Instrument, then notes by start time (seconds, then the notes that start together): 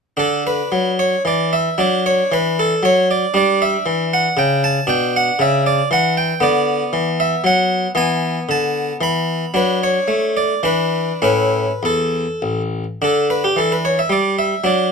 harpsichord
0.17 D3 D4 A4
0.47 B4
0.72 F#3
0.99 C#5
1.25 E3 D5
1.53 E5
1.78 F#3 D4 D5
2.06 C#5
2.32 E3 B4
2.59 A4
2.83 F#3 C#5
3.11 D5
3.34 G3 D4 D5
3.62 E5
3.86 E3
4.13 F#5
4.37 C#3 G5
4.64 A5
4.87 B2 D4 G5
5.16 F#5
5.39 C#3 E5
5.66 D5
5.91 E3 F#5
6.17 G5
6.40 D3 B3 D5
6.93 E3
7.20 E5
7.44 F#3 F#5
7.95 E3 B3 G#5
8.49 D3 A5
9.01 E3 B5
9.54 F#3 D4 B4
9.83 C#5
10.08 A3
10.37 D5
10.63 E3 D4 B4
11.22 A2 C#4 E4 B4
11.83 E2 A4
12.42 A1
13.02 D3 D4 A4
13.30 B4
13.44 G4
13.56 E3 A4
13.72 B4
13.85 C#5
13.99 E5
14.09 G3 D5
14.39 E5
14.64 F#3 D4 D5